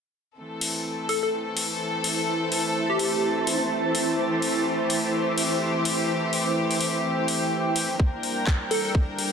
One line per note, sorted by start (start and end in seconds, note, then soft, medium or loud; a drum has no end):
0.38 7.96 E3 medium
0.38 7.96 A3 medium
0.38 7.96 C4 medium
0.38 9.32 E4 medium
0.38 4.15 A4 medium
0.61 open hi-hat medium
0.80 9.32 C5 medium
1.09 1.18 A4 medium
1.09 open hi-hat medium
1.23 1.29 A4 medium
1.57 open hi-hat medium
1.70 5.77 A5 medium
2.04 open hi-hat medium
2.52 open hi-hat loud
2.90 3.55 G4 medium
2.99 open hi-hat loud
3.47 open hi-hat medium
3.95 open hi-hat loud
4.18 7.96 G4 medium
4.42 open hi-hat loud
4.90 open hi-hat loud
5.38 open hi-hat medium
5.61 9.32 G5 medium
5.85 open hi-hat loud
6.33 open hi-hat loud
6.71 open hi-hat medium
6.81 open hi-hat loud
7.28 open hi-hat loud
7.76 open hi-hat loud
7.99 9.32 G3 medium
7.99 9.32 A#3 medium
7.99 9.32 D4 medium
7.99 9.32 A#4 medium
7.99 kick loud
8.22 9.32 A#4 medium
8.22 open hi-hat medium
8.47 kick loud
8.47 clap loud
8.71 8.80 A4 medium
8.71 open hi-hat loud
8.85 8.91 A4 medium
8.95 kick loud
9.19 open hi-hat medium